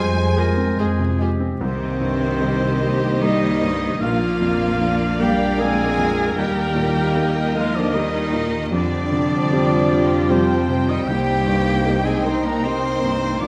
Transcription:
Already playing: F2 F3 G3 G#3 C4 F4 C5 G#5
0.16 G#3
0.36 G#3 F4 G#4 A#4 C5
0.57 C4
0.79 F2 G#3 F4 G#4 C5
0.99 C3
1.19 G#3 F4 G4 G#4 C5
1.40 C4
1.61 C2 C3 D#3 A#3 C4 D#4 G4 C5 D#5
2.01 G2 G3
2.40 G3 D#4 A#4
2.81 G3 A#4
3.21 D#3 G3 D#4 G4 A#4 D#5
3.61 G2 D#4
4.01 A#1 A#2 F3 A#3 D4 F4 A#4 D5 F5
4.40 F2 F3
4.80 A#3 D4 A#4
5.19 G3 A#3 G4 A#4 G5
5.57 G#3 A#3 C4 D4 G#4 A#4 G#5
5.98 F2
6.36 D#2 D#3 G3 A#3 D#4 G4 D#5 G5
6.75 A#2 A#3
7.15 A#3 D#4 G4
7.55 F3 G#3 A#3 F4 D#5 F5
7.74 D3 F3 D4 D5
7.93 D#3 G3 A#3 D#4 G4 A#4 D#5
8.33 A#2 G4
8.71 F2 D3 F3 G3 D4 F4 C5 D5 G5
9.11 C3 G3
9.51 G3 C4 G4
9.89 G3 C5
10.28 C3 F3 G3 C4 G4 C5
10.67 C3 C4
10.87 D#3 G3 D#4 D#5
11.06 C2 C3 G3 A#3 D#4 G4 G5
11.45 G2 G3
11.84 A#3 D#4 G4
12.04 G#3 C4 G#4 G#5
12.23 A#3 C4 D#4 A#4 C5 C6
12.44 A#3 D4 A#4 A#5
12.62 A#3 C4 D#4 G4 C5 C6
13.01 G2 D#4
13.41 A#1 A#2 D4 F4 D5 F5 A#5 D6

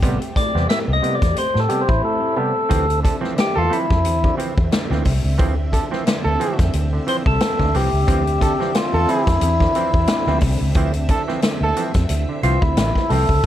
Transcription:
Already playing: A3 C4 G4
0.02 A1 C3 G3 B3, kick, closed hi-hat
0.22 closed hi-hat
0.36 A2 D5, kick, closed hi-hat
0.55 E2 C3 G3 B3, snare
0.69 A2 E5, snare, closed hi-hat
0.88 C2
0.93 D#5
1.02 C3 G3 B3, closed hi-hat
1.15 D5
1.21 E2 G3, kick, snare, closed hi-hat
1.36 G3 B3 C5, muted fingered electric bass stroke, closed hi-hat
1.54 A2, snare
1.60 A4
1.69 C3 G3 B3 G4, closed hi-hat
1.81 C5
1.88 A1 E4, kick
2.03 A2 A4
2.36 C3 G3 B3 A4
2.56 G3 B3
2.69 D2 D3 E3 F3 C4 E5, kick, closed hi-hat
2.90 closed hi-hat
3.03 D3 A4, kick, closed hi-hat
3.21 E3 F3 C4, snare
3.36 D3 G4, snare, closed hi-hat
3.56 E2 F4 A4
3.70 E3 F3 C4 E4, closed hi-hat
3.90 F2 F3 C4, kick, snare
4.05 E2 F3 C4, closed hi-hat
4.24 D3, kick
4.37 E3 F3 C4, closed hi-hat
4.58 E2, kick
4.72 D3, snare, closed hi-hat
4.91 D2 E3 F3 C4, snare
5.05 C2 F3 C4, kick, open hi-hat
5.24 C#2
5.38 D2 E3 F3 C4, kick, closed hi-hat
5.73 D3 A4, kick, closed hi-hat
5.91 E3 F3 C4, snare
6.06 D3, snare, closed hi-hat
6.24 D2 A4
6.40 E3 F3 C4, closed hi-hat
6.59 F2 F3 C4, kick, snare, closed hi-hat
6.73 D2 F3 C4, closed hi-hat
6.93 D3
7.07 E3 F3 C4 C5, closed hi-hat
7.26 C2 A4, kick
7.40 F3 C4, snare, closed hi-hat
7.60 D2 D3, kick, snare
7.74 C2 E3 F3 C4 G4, open hi-hat
7.93 C#2
8.07 D2 E3 F3 C4, kick, closed hi-hat
8.27 closed hi-hat
8.41 D3 A4, kick, closed hi-hat
8.60 E3 F3 C4, snare
8.75 D3 F4, snare, closed hi-hat
8.94 E2 A4
9.08 E3 F3 C4 E4, closed hi-hat
9.27 F2 F3 C4, kick, snare, closed hi-hat
9.41 E2 F3 C4, closed hi-hat
9.60 D3, kick, snare
9.75 E3 F3 C4, closed hi-hat
9.94 E2, kick
10.07 D3, snare, closed hi-hat
10.27 D2 E3 F3 C4, snare
10.41 C2 F3 C4, kick, open hi-hat
10.61 C#2
10.75 D2 E3 F3 C4, kick, closed hi-hat
10.93 closed hi-hat
11.09 D3 A4, kick, closed hi-hat
11.28 E3 F3 C4, snare
11.42 D3, snare, closed hi-hat
11.61 D2 A4
11.76 E3 F3 C4, closed hi-hat
11.94 F2 F3 C4, kick, snare, closed hi-hat
12.09 D2 F3 C4, closed hi-hat
12.29 D3
12.43 C2 E3 F3 C4 F4, closed hi-hat
12.62 D2 E4, kick
12.77 A1 D3, snare, closed hi-hat
12.95 kick, snare
13.09 C2 E3 F3 C4 A4, open hi-hat
13.29 C#2 F3 C4, kick

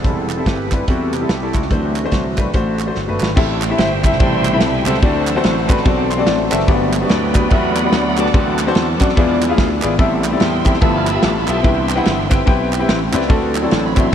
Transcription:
Already playing: C4 A4
0.03 E1 C3 E3 G3 B3 C4 E4 A4, kick, closed hi-hat
0.30 clap, closed hi-hat
0.37 G3 C4 E4 A4
0.46 G1 G4 B4, kick, snare, closed hi-hat
0.71 G3 C4 E4 B4, kick, clap, closed hi-hat
0.88 E2 G3 C4 E4 F#4 A4, kick, closed hi-hat
1.12 C3 G3 B3 C4 G4, clap, closed hi-hat
1.20 G3 C4 E4 A4
1.29 C2, snare, closed hi-hat
1.42 G3 C4 E4 A4
1.54 C#2 A3 C4 F#4, kick, clap, closed hi-hat
1.62 snare
1.71 D2 D3 E3 F#3 A3 C4 D4 F#4 C5, kick, closed hi-hat
1.96 clap, closed hi-hat
2.04 A3 D4 F#4 C5
2.12 C2, kick, snare, closed hi-hat
2.37 E3 F#3 A3 C4 D4 F#4 B4, kick, clap, closed hi-hat
2.53 A1 A3 D4 F#4 C5, kick, closed hi-hat
2.79 clap, closed hi-hat
2.86 A3 D4 F#4 C5
2.95 G1, snare
3.07 A3 D4 F#4 B4, mid tom
3.20 G#1, snare, clap
3.36 A1 A2 C4 E4 G4 A4 E5, kick, crash
3.62 clap, ride
3.69 C4 E4 G4 A4 E5
3.77 G1 C5 E5 G5, snare, ride
4.03 B2 C3 G3 C4 E4 G4 A4 E5, kick, clap, ride
4.12 snare
4.19 A1 C4 E4 G4 A4 D5 E5 G5 C6, kick, ride
4.45 clap, ride
4.52 C4 E4 G4 A4 E5 B5
4.61 C2, snare, ride
4.74 G#5
4.86 C#2 C4 E4 G4 A4 C5 E5 F#5 A5, clap, ride
4.94 snare
5.02 D2 D3 C4 D4 F#4 A4 D5, kick, ride
5.27 E3 F#3 C4, clap, ride
5.36 C4 D4 F#4 A4 C5
5.44 A1, snare, ride
5.68 C4 D4 F#4 A4 B4, kick, clap, ride
5.77 snare
5.84 B1 C4 D4 F#4 A4 D5, kick, ride
6.10 C6, clap, ride
6.17 C4 D4 F#4 A4 D5
6.26 A1 A5, snare, ride
6.50 F#1 C4 D4 F#4 A4 E5 A5, clap, ride
6.60 snare
6.67 G1 G2 F#3 A3 B3 D4 F#4 G4 D5, kick, ride
6.93 clap, ride
7.00 B3 D4 F#4 G4 D5
7.09 D2 B4 D5 G5, snare, ride
7.34 B3 D4 F#4 G4 B4, kick, clap, ride
7.50 E2 B3 D4 F#4 G4 D5 E5 F#5 B5, kick, ride
7.76 clap, ride
7.83 B3 D4 F#4 G4 D5 F#5 B5
7.92 D2, snare, ride
8.17 B3 D4 F#4 G4 D5 F#5 A5 D6, clap, ride
8.26 snare
8.34 D2 D3 E3 F#3 C4 D4 F#4 A4 D5, kick, ride
8.59 clap, ride
8.66 C4 D4 F#4 A4 C5
8.75 E2, snare, ride
9.00 F#2 C4 D4 F#4 A4 D5, kick, clap, ride
9.09 snare
9.16 E2 E3 F3 G#3 B3 D4 E4 F4 G#4 D5, kick, ride
9.42 clap, ride
9.48 B3 E4 F4 G#4 F5
9.58 D2, kick, snare, ride
9.82 G#1 B3 E4 F4 G#4 D5, clap, ride
9.98 A1 A2 G3 B3 C4 E4 G4 A4 E5, kick, ride
10.24 clap, ride
10.31 C4 E4 G4 A4 D5
10.40 E2 E5 G5 C6, snare, ride
10.64 C4 E4 G4 A4 E5, kick, clap, ride
10.74 snare
10.80 G1 G2 F3 A3 B3 E4 F4 G4 A4 E5 A5 B5 E6, kick, ride
10.97 F6
11.07 E6, clap, ride
11.14 B3 F4 G4 A4 E5
11.23 A1 D6, snare, ride
11.37 B5
11.46 B1 B3 F4 G4 A4 E5 G5 C6, clap, ride
11.63 C2 C3 E3 B3 C4 D4 E4 G4 B4 E5, kick, ride
11.89 clap, ride
11.96 C4 E4 G4 B4 F#5
12.05 G1, snare, ride
12.30 C4 E4 G4 B4 G5, kick, clap, ride
12.46 B1 C4 E4 G4 B4 G5, kick, ride
12.73 clap, ride
12.79 C4 E4 G4 B4 G5
12.88 A1, snare, ride
13.13 C#2 C4 E4 G4 B4 D5, clap, ride
13.21 snare
13.28 D2 D3 C4 D4 F#4 A4 D5, kick, ride
13.55 F#3 C4 E4, clap, ride
13.62 C4 D4 F#4 A4 D5
13.71 A1 A5, snare, ride
13.86 B5
13.96 C4 D4 F#4 A4 E5, kick, clap, ride
14.00 C6
14.11 E6

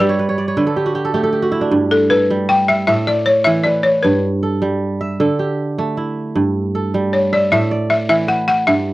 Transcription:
Already playing: G2 D4 B4 E5
0.00 G3 G4 D5
0.09 C#5
0.19 B4
0.29 C#5
0.38 D5
0.48 C#5
0.57 D3 B4
0.67 A4
0.76 G4
0.86 F#4
0.95 G4
1.05 A4
1.14 A3 G4
1.23 A4
1.33 G4
1.42 F#4
1.52 E4
1.61 D4
1.71 G2
1.91 A4
2.10 A4 B4
2.30 G3
2.49 G5
2.68 E5
2.87 A2 E5
3.07 D5
3.26 C#5
3.44 E3 E5
3.64 B4 D5
3.83 C#5
4.03 G2 B4
4.43 A4
4.62 G3
5.01 E5
5.20 D3 A4
5.39 G4
5.78 A3
5.97 E4
6.35 G2
6.75 A4
6.94 G3
7.13 C#5
7.32 D5 E5
7.52 A2 E5
7.71 D5
7.90 E5
8.09 E3 E5
8.28 B4 F#5
8.48 F#5
8.67 G2 E5

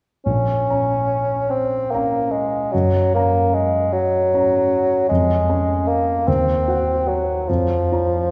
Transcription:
0.26 A#1 C#4
0.70 C#4 C#5 A#5
1.50 C4
1.91 A#3 C#4 C#5 A#5
2.31 G#3
2.72 F#2 F#3
3.14 A#3 C#4 C#5 A#5
3.54 G#3
3.93 F#3
4.33 C#4 C#5 A#5
5.09 F2 G#3
5.49 C#4 C#5 G#5
5.87 A#3
6.28 D#2 C4
6.68 F#4 C5 F#5
7.08 F#3
7.48 F2 F3
7.92 F4 C#5 A#5

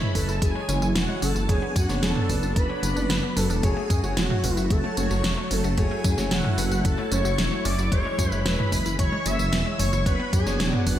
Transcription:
Already playing: E3 G#3 E4 B4 C#5 B5
0.02 G#3, mid tom
0.15 F#1 G#3 C#4 E4 A4 B4 A5, kick, open hi-hat, tambourine
0.28 F#1 E4, tambourine
0.42 F#1 E3 G#4 G#5, kick, closed hi-hat, tambourine
0.55 G#3 E4 C#5
0.69 F#1 G#3 C#4 E4 C#5, closed hi-hat, tambourine
0.82 F#1 E4, tambourine
0.95 E1 E3 F#4 F#5, snare, closed hi-hat, tambourine
1.09 G#3 E4 C#5
1.22 F#1 C#4 A4 A5, open hi-hat, tambourine
1.36 F#1 E4, tambourine
1.49 F#1 F#3 B3 D4 G#4 C#5 G#5, kick, closed hi-hat, tambourine
1.62 B3
1.75 F#2 C#4 F#4 F#5, kick, closed hi-hat, tambourine
1.89 F#1 B3 D4 C#5, snare, tambourine
2.02 E1 F#3 A4 A5, snare, closed hi-hat, tambourine
2.16 B3, mid tom
2.29 F#1 B3 C#4 D4 B4, kick, open hi-hat, tambourine
2.43 F#1 D4, tambourine
2.56 F#1 F#3 B4 B5, kick, closed hi-hat, tambourine
2.69 B3 D4 C#5
2.83 F#1 C#4, closed hi-hat, tambourine
2.96 F#1 B3 D4 D5, tambourine
3.10 F#1 F#3, snare, closed hi-hat, tambourine
3.23 B3
3.36 F#1 B3 C#4 D4 A4 B4 A5, open hi-hat, tambourine
3.50 E1 D4, tambourine
3.63 F#1 F#3 A3 F#4 G#4 C#5 G#5, kick, closed hi-hat, tambourine
3.77 A3
3.90 F#2 C#4, kick, closed hi-hat, tambourine
4.04 F#1 A3 F#4 C#5, tambourine
4.17 E1 F#3 F#4 F#5, snare, closed hi-hat, tambourine
4.30 A3, mid tom
4.44 F#1 A3 C#4 F#4 B4, kick, open hi-hat, tambourine
4.56 F#1 E4 F#4, tambourine
4.70 F#1 F#3 A4 A5, kick, closed hi-hat, tambourine
4.84 A3 F#4 C#5
4.97 F#1 A3 C#4 F#4 C#5 C#6, closed hi-hat, tambourine
5.11 F#1 F#4, tambourine
5.24 E1 F#3, snare, closed hi-hat, tambourine
5.37 A3 F#4 C#5
5.51 F#1 C#4 A4 A5, open hi-hat, tambourine
5.64 F#1 F#4, tambourine
5.77 F#1 F#3 A3 E4 F#4 G#4 C#5 G#5, kick, closed hi-hat, tambourine
5.91 A3
6.04 F#2 C#4, kick, closed hi-hat, tambourine
6.18 F#1 A3 F#4 C#5, snare, tambourine
6.31 E1 F#3 F#4 F#5, snare, closed hi-hat, tambourine
6.45 A3, mid tom
6.58 F#1 A3 C#4 F#4 B4, open hi-hat, tambourine
6.71 F#1 F#4, tambourine
6.85 F#1 F#3 A4 A5, kick, closed hi-hat, tambourine
6.98 A3 F#4 C#5
7.11 F#1 A3 C#4 F#4 C#5 C#6, closed hi-hat, tambourine
7.25 F#1 F#4, tambourine
7.38 E1 F#3, snare, closed hi-hat, tambourine
7.52 A3 F#4 C#5
7.65 F#1 C#4 D5 D6, open hi-hat, tambourine
7.78 F#1 F#4, tambourine
7.92 F#1 E3 G#3 E4 C#5 C#6, kick, closed hi-hat, tambourine
8.05 G#3
8.19 F#2 C#4, kick, closed hi-hat, tambourine
8.32 F#1 G#3 E4 B4 C#5, tambourine
8.45 E1 E3 B4 B5, snare, closed hi-hat, tambourine
8.59 G#3, mid tom
8.72 F#1 G#3 C#4 E4 B4, kick, open hi-hat, tambourine
8.86 F#1 E4, tambourine
8.99 F#1 E3 C#5 C#6, kick, closed hi-hat, tambourine
9.12 G#3 E4 C#5
9.26 F#1 G#3 C#4 E4 C#5 E5 E6, closed hi-hat, tambourine
9.39 F#1 E4, tambourine
9.53 E1 E3, snare, closed hi-hat, tambourine
9.66 G#3 E4 C#5
9.79 F#1 C#4 C#5 C#6, open hi-hat, tambourine
9.93 F#1 E4, tambourine
10.06 F#1 F#3 B3 D4 B4 C#5 B5, kick, closed hi-hat, tambourine
10.20 B3
10.33 F#2 C#4 G#4 G#5, kick, closed hi-hat, tambourine
10.46 F#1 B3 D4 C#5, snare, tambourine
10.60 E1 F#3, snare, closed hi-hat, tambourine
10.73 B3, mid tom
10.86 F#1 B3 C#4 D4 F#4 B4 F#5, kick, open hi-hat, tambourine

